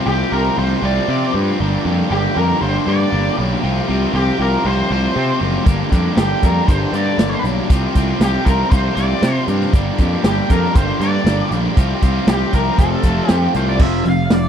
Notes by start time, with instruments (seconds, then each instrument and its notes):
0.06 picked electric bass C2, overdriven electric guitar C3 F3 C4 F4 G4, lead electric guitar G4
0.31 picked electric bass C2, overdriven electric guitar C3 F3 C4 F4 G4, lead electric guitar A#4
0.57 picked electric bass C2, overdriven electric guitar C3 F3 C4 F4 G4, lead electric guitar C5
0.82 picked electric bass C2, overdriven electric guitar C3 F3 C4 F4 G4, lead electric guitar D5
1.08 overdriven electric guitar C3 F3 C4 F4 G4, picked electric bass C3
1.33 picked electric bass G2, overdriven electric guitar C3 F3 C4 F4 G4
1.59 picked electric bass G1, overdriven electric guitar G2 D3 G3 A#3 D4 G4
1.84 picked electric bass F2, overdriven electric guitar G2 D3 G3 A#3 D4 G4
2.09 picked electric bass G1, overdriven electric guitar G2 D3 G3 A#3 D4 G4, lead electric guitar G4
2.34 picked electric bass F2, overdriven electric guitar G2 D3 G3 A#3 D4 G4, lead electric guitar A#4
2.60 picked electric bass G1, overdriven electric guitar G2 D3 G3 A#3 D4 G4, lead electric guitar C5
2.85 overdriven electric guitar G2 D3 G3 A#3 D4 G4, picked electric bass G2, lead electric guitar D5
3.11 picked electric bass G1, overdriven electric guitar G2 D3 G3 A#3 D4 G4
3.37 picked electric bass B1, overdriven electric guitar G2 D3 G3 A#3 D4 G4
3.62 picked electric bass C2, overdriven electric guitar C3 F3 C4 F4 G4
3.88 picked electric bass C2, overdriven electric guitar C3 F3 C4 F4 G4
4.13 picked electric bass C2, overdriven electric guitar C3 F3 C4 F4 G4, lead electric guitar G4
4.39 picked electric bass C2, overdriven electric guitar C3 F3 C4 F4 G4, lead electric guitar A#4
4.64 picked electric bass C2, overdriven electric guitar C3 F3 C4 F4 G4, lead electric guitar C5
4.90 picked electric bass C2, overdriven electric guitar C3 F3 C4 F4 G4, lead electric guitar C5
5.15 overdriven electric guitar C3 F3 C4 F4 G4, picked electric bass C3
5.40 picked electric bass F#1, overdriven electric guitar C3 F3 C4 F4 G4
5.65 picked electric bass G1, overdriven electric guitar G2 D3 G3 A#3 D4 G4, kick, closed hi-hat
5.91 picked electric bass F2, overdriven electric guitar G2 D3 G3 A#3 D4 G4, kick, closed hi-hat
6.16 picked electric bass G1, overdriven electric guitar G2 D3 G3 A#3 D4 G4, lead electric guitar G4, snare, closed hi-hat
6.43 picked electric bass F2, overdriven electric guitar G2 D3 G3 A#3 D4 G4, lead electric guitar A#4, kick, closed hi-hat
6.68 picked electric bass G1, overdriven electric guitar G2 D3 G3 A#3 D4 G4, lead electric guitar C5, kick, closed hi-hat
6.93 picked electric bass G2, overdriven electric guitar G2 D3 G3 A#3 D4 G4, lead electric guitar D5, closed hi-hat
7.18 picked electric bass G1, overdriven electric guitar G2 D3 G3 A#3 D4 G4, snare, closed hi-hat
7.44 picked electric bass B1, overdriven electric guitar G2 D3 G3 A#3 D4 G4, closed hi-hat
7.70 picked electric bass C2, overdriven electric guitar C3 F3 C4 F4 G4, kick, closed hi-hat
7.95 picked electric bass C2, overdriven electric guitar C3 F3 C4 F4 G4, kick, closed hi-hat
8.20 picked electric bass C2, overdriven electric guitar C3 F3 C4 F4 G4, lead electric guitar G4, snare, closed hi-hat
8.45 picked electric bass C2, overdriven electric guitar C3 F3 C4 F4 G4, lead electric guitar A#4, kick, closed hi-hat
8.70 picked electric bass C2, overdriven electric guitar C3 F3 C4 F4 G4, lead electric guitar C5, kick, closed hi-hat
8.95 picked electric bass C2, overdriven electric guitar C3 F3 C4 F4 G4, lead electric guitar D5, closed hi-hat
9.22 overdriven electric guitar C3 F3 C4 F4 G4, picked electric bass C3, snare, closed hi-hat
9.47 picked electric bass G2, overdriven electric guitar C3 F3 C4 F4 G4, closed hi-hat
9.61 snare
9.73 picked electric bass G1, overdriven electric guitar G2 D3 G3 A#3 D4 G4, kick, closed hi-hat
9.98 picked electric bass F2, overdriven electric guitar G2 D3 G3 A#3 D4 G4, kick, closed hi-hat
10.24 picked electric bass G1, overdriven electric guitar G2 D3 G3 A#3 D4 G4, lead electric guitar G4, snare, closed hi-hat
10.50 picked electric bass F2, overdriven electric guitar G2 D3 G3 A#3 D4 G4, lead electric guitar A#4, kick, closed hi-hat
10.75 picked electric bass G1, overdriven electric guitar G2 D3 G3 A#3 D4 G4, lead electric guitar C5, kick, closed hi-hat
11.00 picked electric bass G2, overdriven electric guitar G2 D3 G3 A#3 D4 G4, lead electric guitar D5, closed hi-hat
11.25 picked electric bass G1, overdriven electric guitar G2 D3 G3 A#3 D4 G4, snare, closed hi-hat
11.51 picked electric bass A#1, overdriven electric guitar G2 D3 G3 A#3 D4 G4, closed hi-hat
11.77 picked electric bass C2, overdriven electric guitar C3 F3 C4 F4 G4, kick, closed hi-hat
12.02 picked electric bass C2, overdriven electric guitar C3 F3 C4 F4 G4, kick, closed hi-hat
12.27 picked electric bass C2, overdriven electric guitar C3 F3 C4 F4 G4, lead electric guitar G4, snare, closed hi-hat
12.52 picked electric bass C2, overdriven electric guitar C3 F3 C4 F4 G4, lead electric guitar A#4, kick, closed hi-hat
12.77 picked electric bass F1, overdriven electric guitar F2 C3 F3 A3 C4 F4, lead electric guitar A4, kick, closed hi-hat
13.03 picked electric bass F1, overdriven electric guitar F2 C3 F3 A3 C4 F4, kick, closed hi-hat
13.28 overdriven electric guitar F2 C3 F3 A3 C4 F4, picked electric bass F2, lead electric guitar G4, snare, closed hi-hat
13.54 picked electric bass C2, overdriven electric guitar F2 C3 F3 A3 C4 F4, lead electric guitar C5, closed hi-hat
13.69 lead electric guitar D5
13.79 picked electric bass F1, overdriven electric guitar F2 C3 F3, lead electric guitar E5, kick, crash
14.05 picked electric bass F1, overdriven electric guitar F2 C3, lead electric guitar F5, open hi-hat
14.30 picked electric bass F1, overdriven electric guitar F2 C3, lead electric guitar D5, snare, open hi-hat